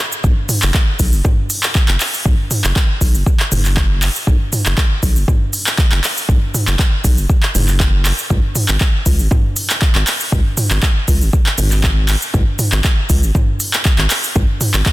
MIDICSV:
0, 0, Header, 1, 3, 480
1, 0, Start_track
1, 0, Tempo, 504202
1, 228, Time_signature, 4, 2, 24, 8
1, 14209, End_track
2, 0, Start_track
2, 0, Title_t, "Analog synth bass"
2, 0, Program_c, 0, 38
2, 230, Note_on_c, 0, 35, 100
2, 317, Note_off_c, 0, 35, 0
2, 602, Note_on_c, 0, 30, 92
2, 678, Note_off_c, 0, 30, 0
2, 950, Note_on_c, 0, 35, 80
2, 1078, Note_on_c, 0, 30, 91
2, 1092, Note_off_c, 0, 35, 0
2, 1156, Note_off_c, 0, 30, 0
2, 1796, Note_on_c, 0, 30, 97
2, 1875, Note_off_c, 0, 30, 0
2, 2148, Note_on_c, 0, 35, 99
2, 2236, Note_off_c, 0, 35, 0
2, 2519, Note_on_c, 0, 30, 92
2, 2596, Note_off_c, 0, 30, 0
2, 2868, Note_on_c, 0, 35, 80
2, 2998, Note_on_c, 0, 30, 91
2, 3012, Note_off_c, 0, 35, 0
2, 3076, Note_off_c, 0, 30, 0
2, 3352, Note_on_c, 0, 30, 100
2, 3895, Note_off_c, 0, 30, 0
2, 4069, Note_on_c, 0, 35, 99
2, 4157, Note_off_c, 0, 35, 0
2, 4441, Note_on_c, 0, 30, 86
2, 4517, Note_off_c, 0, 30, 0
2, 4788, Note_on_c, 0, 35, 82
2, 4915, Note_on_c, 0, 30, 92
2, 4929, Note_off_c, 0, 35, 0
2, 4994, Note_off_c, 0, 30, 0
2, 5636, Note_on_c, 0, 30, 99
2, 5715, Note_off_c, 0, 30, 0
2, 5987, Note_on_c, 0, 35, 100
2, 6076, Note_off_c, 0, 35, 0
2, 6355, Note_on_c, 0, 30, 89
2, 6434, Note_off_c, 0, 30, 0
2, 6708, Note_on_c, 0, 35, 78
2, 6831, Note_on_c, 0, 30, 91
2, 6845, Note_off_c, 0, 35, 0
2, 6912, Note_off_c, 0, 30, 0
2, 7187, Note_on_c, 0, 30, 96
2, 7733, Note_off_c, 0, 30, 0
2, 7907, Note_on_c, 0, 37, 101
2, 7995, Note_off_c, 0, 37, 0
2, 8276, Note_on_c, 0, 32, 90
2, 8355, Note_off_c, 0, 32, 0
2, 8627, Note_on_c, 0, 37, 81
2, 8756, Note_on_c, 0, 32, 93
2, 8770, Note_off_c, 0, 37, 0
2, 8835, Note_off_c, 0, 32, 0
2, 9474, Note_on_c, 0, 32, 100
2, 9554, Note_off_c, 0, 32, 0
2, 9830, Note_on_c, 0, 37, 98
2, 9917, Note_off_c, 0, 37, 0
2, 10195, Note_on_c, 0, 32, 90
2, 10274, Note_off_c, 0, 32, 0
2, 10550, Note_on_c, 0, 37, 82
2, 10676, Note_on_c, 0, 32, 93
2, 10690, Note_off_c, 0, 37, 0
2, 10755, Note_off_c, 0, 32, 0
2, 11030, Note_on_c, 0, 32, 100
2, 11574, Note_off_c, 0, 32, 0
2, 11750, Note_on_c, 0, 37, 100
2, 11837, Note_off_c, 0, 37, 0
2, 12114, Note_on_c, 0, 32, 90
2, 12194, Note_off_c, 0, 32, 0
2, 12469, Note_on_c, 0, 37, 82
2, 12595, Note_on_c, 0, 32, 92
2, 12609, Note_off_c, 0, 37, 0
2, 12674, Note_off_c, 0, 32, 0
2, 13312, Note_on_c, 0, 32, 97
2, 13393, Note_off_c, 0, 32, 0
2, 13670, Note_on_c, 0, 37, 102
2, 13757, Note_off_c, 0, 37, 0
2, 14035, Note_on_c, 0, 32, 88
2, 14114, Note_off_c, 0, 32, 0
2, 14209, End_track
3, 0, Start_track
3, 0, Title_t, "Drums"
3, 115, Note_on_c, 9, 82, 50
3, 210, Note_off_c, 9, 82, 0
3, 227, Note_on_c, 9, 45, 73
3, 228, Note_on_c, 9, 82, 39
3, 229, Note_on_c, 9, 36, 116
3, 322, Note_off_c, 9, 45, 0
3, 323, Note_off_c, 9, 82, 0
3, 324, Note_off_c, 9, 36, 0
3, 466, Note_on_c, 9, 45, 75
3, 466, Note_on_c, 9, 46, 93
3, 466, Note_on_c, 9, 82, 90
3, 561, Note_off_c, 9, 45, 0
3, 561, Note_off_c, 9, 46, 0
3, 561, Note_off_c, 9, 82, 0
3, 592, Note_on_c, 9, 39, 88
3, 593, Note_on_c, 9, 82, 52
3, 687, Note_off_c, 9, 39, 0
3, 688, Note_off_c, 9, 82, 0
3, 707, Note_on_c, 9, 39, 102
3, 708, Note_on_c, 9, 82, 38
3, 709, Note_on_c, 9, 36, 124
3, 802, Note_off_c, 9, 39, 0
3, 803, Note_off_c, 9, 82, 0
3, 804, Note_off_c, 9, 36, 0
3, 946, Note_on_c, 9, 46, 91
3, 946, Note_on_c, 9, 82, 93
3, 948, Note_on_c, 9, 36, 59
3, 1041, Note_off_c, 9, 46, 0
3, 1042, Note_off_c, 9, 82, 0
3, 1043, Note_off_c, 9, 36, 0
3, 1073, Note_on_c, 9, 82, 53
3, 1168, Note_off_c, 9, 82, 0
3, 1186, Note_on_c, 9, 45, 85
3, 1187, Note_on_c, 9, 82, 38
3, 1188, Note_on_c, 9, 36, 113
3, 1282, Note_off_c, 9, 45, 0
3, 1282, Note_off_c, 9, 82, 0
3, 1284, Note_off_c, 9, 36, 0
3, 1427, Note_on_c, 9, 46, 96
3, 1427, Note_on_c, 9, 82, 94
3, 1522, Note_off_c, 9, 46, 0
3, 1522, Note_off_c, 9, 82, 0
3, 1553, Note_on_c, 9, 39, 94
3, 1553, Note_on_c, 9, 82, 52
3, 1648, Note_off_c, 9, 39, 0
3, 1648, Note_off_c, 9, 82, 0
3, 1668, Note_on_c, 9, 36, 119
3, 1669, Note_on_c, 9, 39, 100
3, 1670, Note_on_c, 9, 82, 38
3, 1763, Note_off_c, 9, 36, 0
3, 1764, Note_off_c, 9, 39, 0
3, 1765, Note_off_c, 9, 82, 0
3, 1793, Note_on_c, 9, 39, 94
3, 1888, Note_off_c, 9, 39, 0
3, 1908, Note_on_c, 9, 39, 98
3, 1908, Note_on_c, 9, 46, 94
3, 1908, Note_on_c, 9, 82, 93
3, 2003, Note_off_c, 9, 39, 0
3, 2003, Note_off_c, 9, 46, 0
3, 2004, Note_off_c, 9, 82, 0
3, 2035, Note_on_c, 9, 46, 54
3, 2035, Note_on_c, 9, 82, 53
3, 2130, Note_off_c, 9, 46, 0
3, 2131, Note_off_c, 9, 82, 0
3, 2147, Note_on_c, 9, 36, 122
3, 2148, Note_on_c, 9, 45, 75
3, 2148, Note_on_c, 9, 82, 41
3, 2242, Note_off_c, 9, 36, 0
3, 2243, Note_off_c, 9, 45, 0
3, 2243, Note_off_c, 9, 82, 0
3, 2387, Note_on_c, 9, 45, 75
3, 2387, Note_on_c, 9, 46, 90
3, 2388, Note_on_c, 9, 82, 93
3, 2482, Note_off_c, 9, 45, 0
3, 2482, Note_off_c, 9, 46, 0
3, 2483, Note_off_c, 9, 82, 0
3, 2515, Note_on_c, 9, 39, 89
3, 2516, Note_on_c, 9, 82, 56
3, 2610, Note_off_c, 9, 39, 0
3, 2611, Note_off_c, 9, 82, 0
3, 2627, Note_on_c, 9, 36, 126
3, 2631, Note_on_c, 9, 39, 96
3, 2632, Note_on_c, 9, 82, 40
3, 2722, Note_off_c, 9, 36, 0
3, 2727, Note_off_c, 9, 39, 0
3, 2727, Note_off_c, 9, 82, 0
3, 2867, Note_on_c, 9, 36, 61
3, 2869, Note_on_c, 9, 46, 90
3, 2870, Note_on_c, 9, 82, 96
3, 2962, Note_off_c, 9, 36, 0
3, 2964, Note_off_c, 9, 46, 0
3, 2965, Note_off_c, 9, 82, 0
3, 2994, Note_on_c, 9, 82, 56
3, 3090, Note_off_c, 9, 82, 0
3, 3108, Note_on_c, 9, 36, 119
3, 3109, Note_on_c, 9, 82, 42
3, 3203, Note_off_c, 9, 36, 0
3, 3204, Note_off_c, 9, 82, 0
3, 3233, Note_on_c, 9, 39, 86
3, 3329, Note_off_c, 9, 39, 0
3, 3349, Note_on_c, 9, 45, 80
3, 3349, Note_on_c, 9, 46, 90
3, 3349, Note_on_c, 9, 82, 98
3, 3444, Note_off_c, 9, 45, 0
3, 3444, Note_off_c, 9, 46, 0
3, 3444, Note_off_c, 9, 82, 0
3, 3475, Note_on_c, 9, 39, 30
3, 3476, Note_on_c, 9, 82, 54
3, 3571, Note_off_c, 9, 39, 0
3, 3571, Note_off_c, 9, 82, 0
3, 3588, Note_on_c, 9, 36, 125
3, 3588, Note_on_c, 9, 39, 91
3, 3588, Note_on_c, 9, 82, 39
3, 3683, Note_off_c, 9, 36, 0
3, 3683, Note_off_c, 9, 39, 0
3, 3684, Note_off_c, 9, 82, 0
3, 3830, Note_on_c, 9, 39, 97
3, 3830, Note_on_c, 9, 46, 93
3, 3830, Note_on_c, 9, 82, 97
3, 3925, Note_off_c, 9, 39, 0
3, 3925, Note_off_c, 9, 46, 0
3, 3925, Note_off_c, 9, 82, 0
3, 3957, Note_on_c, 9, 82, 55
3, 4052, Note_off_c, 9, 82, 0
3, 4067, Note_on_c, 9, 36, 126
3, 4069, Note_on_c, 9, 45, 76
3, 4070, Note_on_c, 9, 82, 41
3, 4162, Note_off_c, 9, 36, 0
3, 4165, Note_off_c, 9, 45, 0
3, 4165, Note_off_c, 9, 82, 0
3, 4309, Note_on_c, 9, 45, 77
3, 4309, Note_on_c, 9, 46, 87
3, 4310, Note_on_c, 9, 82, 96
3, 4405, Note_off_c, 9, 45, 0
3, 4405, Note_off_c, 9, 46, 0
3, 4405, Note_off_c, 9, 82, 0
3, 4434, Note_on_c, 9, 39, 85
3, 4435, Note_on_c, 9, 82, 57
3, 4530, Note_off_c, 9, 39, 0
3, 4530, Note_off_c, 9, 82, 0
3, 4546, Note_on_c, 9, 36, 127
3, 4549, Note_on_c, 9, 39, 95
3, 4550, Note_on_c, 9, 82, 41
3, 4641, Note_off_c, 9, 36, 0
3, 4644, Note_off_c, 9, 39, 0
3, 4645, Note_off_c, 9, 82, 0
3, 4786, Note_on_c, 9, 36, 63
3, 4788, Note_on_c, 9, 46, 88
3, 4788, Note_on_c, 9, 82, 98
3, 4882, Note_off_c, 9, 36, 0
3, 4883, Note_off_c, 9, 46, 0
3, 4884, Note_off_c, 9, 82, 0
3, 4913, Note_on_c, 9, 82, 57
3, 5009, Note_off_c, 9, 82, 0
3, 5026, Note_on_c, 9, 36, 124
3, 5029, Note_on_c, 9, 45, 89
3, 5030, Note_on_c, 9, 82, 42
3, 5122, Note_off_c, 9, 36, 0
3, 5124, Note_off_c, 9, 45, 0
3, 5125, Note_off_c, 9, 82, 0
3, 5266, Note_on_c, 9, 46, 88
3, 5266, Note_on_c, 9, 82, 100
3, 5361, Note_off_c, 9, 46, 0
3, 5361, Note_off_c, 9, 82, 0
3, 5394, Note_on_c, 9, 39, 92
3, 5394, Note_on_c, 9, 82, 55
3, 5489, Note_off_c, 9, 39, 0
3, 5489, Note_off_c, 9, 82, 0
3, 5506, Note_on_c, 9, 36, 124
3, 5508, Note_on_c, 9, 39, 96
3, 5509, Note_on_c, 9, 82, 39
3, 5601, Note_off_c, 9, 36, 0
3, 5603, Note_off_c, 9, 39, 0
3, 5604, Note_off_c, 9, 82, 0
3, 5634, Note_on_c, 9, 39, 93
3, 5729, Note_off_c, 9, 39, 0
3, 5750, Note_on_c, 9, 39, 99
3, 5750, Note_on_c, 9, 46, 88
3, 5750, Note_on_c, 9, 82, 99
3, 5845, Note_off_c, 9, 39, 0
3, 5845, Note_off_c, 9, 46, 0
3, 5846, Note_off_c, 9, 82, 0
3, 5877, Note_on_c, 9, 46, 52
3, 5877, Note_on_c, 9, 82, 55
3, 5972, Note_off_c, 9, 46, 0
3, 5973, Note_off_c, 9, 82, 0
3, 5986, Note_on_c, 9, 36, 122
3, 5989, Note_on_c, 9, 45, 81
3, 5989, Note_on_c, 9, 82, 41
3, 6081, Note_off_c, 9, 36, 0
3, 6084, Note_off_c, 9, 45, 0
3, 6085, Note_off_c, 9, 82, 0
3, 6231, Note_on_c, 9, 45, 78
3, 6231, Note_on_c, 9, 46, 84
3, 6231, Note_on_c, 9, 82, 94
3, 6326, Note_off_c, 9, 45, 0
3, 6326, Note_off_c, 9, 46, 0
3, 6326, Note_off_c, 9, 82, 0
3, 6355, Note_on_c, 9, 39, 84
3, 6356, Note_on_c, 9, 82, 56
3, 6450, Note_off_c, 9, 39, 0
3, 6451, Note_off_c, 9, 82, 0
3, 6466, Note_on_c, 9, 36, 127
3, 6468, Note_on_c, 9, 39, 99
3, 6468, Note_on_c, 9, 82, 40
3, 6561, Note_off_c, 9, 36, 0
3, 6563, Note_off_c, 9, 39, 0
3, 6564, Note_off_c, 9, 82, 0
3, 6706, Note_on_c, 9, 36, 64
3, 6706, Note_on_c, 9, 46, 87
3, 6707, Note_on_c, 9, 82, 99
3, 6801, Note_off_c, 9, 36, 0
3, 6801, Note_off_c, 9, 46, 0
3, 6802, Note_off_c, 9, 82, 0
3, 6832, Note_on_c, 9, 82, 57
3, 6927, Note_off_c, 9, 82, 0
3, 6944, Note_on_c, 9, 82, 41
3, 6945, Note_on_c, 9, 36, 122
3, 7039, Note_off_c, 9, 82, 0
3, 7040, Note_off_c, 9, 36, 0
3, 7071, Note_on_c, 9, 39, 82
3, 7166, Note_off_c, 9, 39, 0
3, 7187, Note_on_c, 9, 45, 86
3, 7187, Note_on_c, 9, 46, 86
3, 7188, Note_on_c, 9, 82, 96
3, 7282, Note_off_c, 9, 45, 0
3, 7282, Note_off_c, 9, 46, 0
3, 7283, Note_off_c, 9, 82, 0
3, 7312, Note_on_c, 9, 39, 30
3, 7313, Note_on_c, 9, 82, 53
3, 7407, Note_off_c, 9, 39, 0
3, 7408, Note_off_c, 9, 82, 0
3, 7426, Note_on_c, 9, 36, 122
3, 7426, Note_on_c, 9, 39, 96
3, 7427, Note_on_c, 9, 82, 40
3, 7521, Note_off_c, 9, 36, 0
3, 7522, Note_off_c, 9, 39, 0
3, 7522, Note_off_c, 9, 82, 0
3, 7666, Note_on_c, 9, 39, 92
3, 7666, Note_on_c, 9, 46, 85
3, 7666, Note_on_c, 9, 82, 97
3, 7761, Note_off_c, 9, 39, 0
3, 7761, Note_off_c, 9, 46, 0
3, 7762, Note_off_c, 9, 82, 0
3, 7790, Note_on_c, 9, 82, 54
3, 7885, Note_off_c, 9, 82, 0
3, 7904, Note_on_c, 9, 45, 82
3, 7905, Note_on_c, 9, 82, 40
3, 7906, Note_on_c, 9, 36, 120
3, 7999, Note_off_c, 9, 45, 0
3, 8000, Note_off_c, 9, 82, 0
3, 8001, Note_off_c, 9, 36, 0
3, 8143, Note_on_c, 9, 45, 81
3, 8143, Note_on_c, 9, 46, 84
3, 8144, Note_on_c, 9, 82, 91
3, 8239, Note_off_c, 9, 45, 0
3, 8239, Note_off_c, 9, 46, 0
3, 8239, Note_off_c, 9, 82, 0
3, 8268, Note_on_c, 9, 39, 82
3, 8268, Note_on_c, 9, 82, 52
3, 8363, Note_off_c, 9, 39, 0
3, 8363, Note_off_c, 9, 82, 0
3, 8383, Note_on_c, 9, 39, 100
3, 8383, Note_on_c, 9, 82, 38
3, 8386, Note_on_c, 9, 36, 121
3, 8478, Note_off_c, 9, 39, 0
3, 8479, Note_off_c, 9, 82, 0
3, 8481, Note_off_c, 9, 36, 0
3, 8624, Note_on_c, 9, 46, 86
3, 8625, Note_on_c, 9, 82, 94
3, 8626, Note_on_c, 9, 36, 61
3, 8720, Note_off_c, 9, 46, 0
3, 8720, Note_off_c, 9, 82, 0
3, 8721, Note_off_c, 9, 36, 0
3, 8751, Note_on_c, 9, 82, 54
3, 8846, Note_off_c, 9, 82, 0
3, 8863, Note_on_c, 9, 45, 99
3, 8864, Note_on_c, 9, 82, 39
3, 8866, Note_on_c, 9, 36, 115
3, 8959, Note_off_c, 9, 45, 0
3, 8959, Note_off_c, 9, 82, 0
3, 8962, Note_off_c, 9, 36, 0
3, 9105, Note_on_c, 9, 46, 86
3, 9105, Note_on_c, 9, 82, 91
3, 9200, Note_off_c, 9, 46, 0
3, 9201, Note_off_c, 9, 82, 0
3, 9233, Note_on_c, 9, 39, 86
3, 9233, Note_on_c, 9, 82, 52
3, 9328, Note_off_c, 9, 39, 0
3, 9328, Note_off_c, 9, 82, 0
3, 9347, Note_on_c, 9, 36, 117
3, 9347, Note_on_c, 9, 39, 96
3, 9347, Note_on_c, 9, 82, 39
3, 9442, Note_off_c, 9, 36, 0
3, 9442, Note_off_c, 9, 39, 0
3, 9443, Note_off_c, 9, 82, 0
3, 9473, Note_on_c, 9, 39, 88
3, 9568, Note_off_c, 9, 39, 0
3, 9588, Note_on_c, 9, 39, 89
3, 9588, Note_on_c, 9, 46, 89
3, 9589, Note_on_c, 9, 82, 93
3, 9683, Note_off_c, 9, 39, 0
3, 9683, Note_off_c, 9, 46, 0
3, 9684, Note_off_c, 9, 82, 0
3, 9714, Note_on_c, 9, 46, 51
3, 9714, Note_on_c, 9, 82, 53
3, 9809, Note_off_c, 9, 46, 0
3, 9810, Note_off_c, 9, 82, 0
3, 9828, Note_on_c, 9, 36, 116
3, 9829, Note_on_c, 9, 45, 81
3, 9830, Note_on_c, 9, 82, 39
3, 9923, Note_off_c, 9, 36, 0
3, 9924, Note_off_c, 9, 45, 0
3, 9925, Note_off_c, 9, 82, 0
3, 10066, Note_on_c, 9, 45, 81
3, 10066, Note_on_c, 9, 46, 89
3, 10067, Note_on_c, 9, 82, 89
3, 10161, Note_off_c, 9, 45, 0
3, 10161, Note_off_c, 9, 46, 0
3, 10162, Note_off_c, 9, 82, 0
3, 10193, Note_on_c, 9, 39, 80
3, 10194, Note_on_c, 9, 82, 51
3, 10289, Note_off_c, 9, 39, 0
3, 10289, Note_off_c, 9, 82, 0
3, 10307, Note_on_c, 9, 36, 120
3, 10308, Note_on_c, 9, 39, 105
3, 10308, Note_on_c, 9, 82, 38
3, 10403, Note_off_c, 9, 36, 0
3, 10403, Note_off_c, 9, 39, 0
3, 10403, Note_off_c, 9, 82, 0
3, 10547, Note_on_c, 9, 46, 89
3, 10548, Note_on_c, 9, 82, 89
3, 10549, Note_on_c, 9, 36, 58
3, 10643, Note_off_c, 9, 46, 0
3, 10643, Note_off_c, 9, 82, 0
3, 10644, Note_off_c, 9, 36, 0
3, 10673, Note_on_c, 9, 82, 52
3, 10768, Note_off_c, 9, 82, 0
3, 10787, Note_on_c, 9, 82, 39
3, 10789, Note_on_c, 9, 36, 114
3, 10882, Note_off_c, 9, 82, 0
3, 10884, Note_off_c, 9, 36, 0
3, 10912, Note_on_c, 9, 39, 78
3, 11007, Note_off_c, 9, 39, 0
3, 11024, Note_on_c, 9, 45, 87
3, 11024, Note_on_c, 9, 46, 91
3, 11025, Note_on_c, 9, 82, 89
3, 11119, Note_off_c, 9, 45, 0
3, 11119, Note_off_c, 9, 46, 0
3, 11120, Note_off_c, 9, 82, 0
3, 11152, Note_on_c, 9, 39, 33
3, 11153, Note_on_c, 9, 82, 52
3, 11247, Note_off_c, 9, 39, 0
3, 11248, Note_off_c, 9, 82, 0
3, 11267, Note_on_c, 9, 39, 106
3, 11267, Note_on_c, 9, 82, 37
3, 11269, Note_on_c, 9, 36, 112
3, 11362, Note_off_c, 9, 39, 0
3, 11363, Note_off_c, 9, 82, 0
3, 11364, Note_off_c, 9, 36, 0
3, 11504, Note_on_c, 9, 39, 90
3, 11504, Note_on_c, 9, 46, 92
3, 11504, Note_on_c, 9, 82, 91
3, 11599, Note_off_c, 9, 39, 0
3, 11599, Note_off_c, 9, 46, 0
3, 11600, Note_off_c, 9, 82, 0
3, 11633, Note_on_c, 9, 82, 52
3, 11728, Note_off_c, 9, 82, 0
3, 11746, Note_on_c, 9, 45, 82
3, 11746, Note_on_c, 9, 82, 38
3, 11749, Note_on_c, 9, 36, 113
3, 11841, Note_off_c, 9, 45, 0
3, 11842, Note_off_c, 9, 82, 0
3, 11844, Note_off_c, 9, 36, 0
3, 11985, Note_on_c, 9, 45, 82
3, 11985, Note_on_c, 9, 46, 91
3, 11985, Note_on_c, 9, 82, 90
3, 12080, Note_off_c, 9, 45, 0
3, 12080, Note_off_c, 9, 46, 0
3, 12080, Note_off_c, 9, 82, 0
3, 12111, Note_on_c, 9, 39, 82
3, 12111, Note_on_c, 9, 82, 52
3, 12206, Note_off_c, 9, 39, 0
3, 12206, Note_off_c, 9, 82, 0
3, 12227, Note_on_c, 9, 39, 104
3, 12227, Note_on_c, 9, 82, 37
3, 12228, Note_on_c, 9, 36, 114
3, 12322, Note_off_c, 9, 39, 0
3, 12322, Note_off_c, 9, 82, 0
3, 12323, Note_off_c, 9, 36, 0
3, 12467, Note_on_c, 9, 46, 93
3, 12467, Note_on_c, 9, 82, 86
3, 12469, Note_on_c, 9, 36, 56
3, 12562, Note_off_c, 9, 46, 0
3, 12562, Note_off_c, 9, 82, 0
3, 12564, Note_off_c, 9, 36, 0
3, 12595, Note_on_c, 9, 82, 50
3, 12690, Note_off_c, 9, 82, 0
3, 12708, Note_on_c, 9, 45, 95
3, 12709, Note_on_c, 9, 36, 107
3, 12709, Note_on_c, 9, 82, 38
3, 12804, Note_off_c, 9, 36, 0
3, 12804, Note_off_c, 9, 45, 0
3, 12804, Note_off_c, 9, 82, 0
3, 12947, Note_on_c, 9, 46, 93
3, 12948, Note_on_c, 9, 82, 90
3, 13042, Note_off_c, 9, 46, 0
3, 13043, Note_off_c, 9, 82, 0
3, 13076, Note_on_c, 9, 39, 89
3, 13076, Note_on_c, 9, 82, 49
3, 13171, Note_off_c, 9, 39, 0
3, 13171, Note_off_c, 9, 82, 0
3, 13188, Note_on_c, 9, 39, 104
3, 13188, Note_on_c, 9, 82, 37
3, 13189, Note_on_c, 9, 36, 112
3, 13283, Note_off_c, 9, 39, 0
3, 13283, Note_off_c, 9, 82, 0
3, 13284, Note_off_c, 9, 36, 0
3, 13312, Note_on_c, 9, 39, 90
3, 13407, Note_off_c, 9, 39, 0
3, 13426, Note_on_c, 9, 39, 93
3, 13426, Note_on_c, 9, 46, 95
3, 13427, Note_on_c, 9, 82, 89
3, 13521, Note_off_c, 9, 39, 0
3, 13521, Note_off_c, 9, 46, 0
3, 13522, Note_off_c, 9, 82, 0
3, 13553, Note_on_c, 9, 46, 54
3, 13554, Note_on_c, 9, 82, 50
3, 13649, Note_off_c, 9, 46, 0
3, 13649, Note_off_c, 9, 82, 0
3, 13666, Note_on_c, 9, 45, 79
3, 13667, Note_on_c, 9, 82, 38
3, 13669, Note_on_c, 9, 36, 117
3, 13762, Note_off_c, 9, 45, 0
3, 13762, Note_off_c, 9, 82, 0
3, 13764, Note_off_c, 9, 36, 0
3, 13906, Note_on_c, 9, 45, 77
3, 13906, Note_on_c, 9, 46, 96
3, 13907, Note_on_c, 9, 82, 88
3, 14002, Note_off_c, 9, 45, 0
3, 14002, Note_off_c, 9, 46, 0
3, 14002, Note_off_c, 9, 82, 0
3, 14032, Note_on_c, 9, 39, 89
3, 14033, Note_on_c, 9, 82, 53
3, 14128, Note_off_c, 9, 39, 0
3, 14128, Note_off_c, 9, 82, 0
3, 14146, Note_on_c, 9, 39, 102
3, 14147, Note_on_c, 9, 82, 38
3, 14148, Note_on_c, 9, 36, 122
3, 14209, Note_off_c, 9, 36, 0
3, 14209, Note_off_c, 9, 39, 0
3, 14209, Note_off_c, 9, 82, 0
3, 14209, End_track
0, 0, End_of_file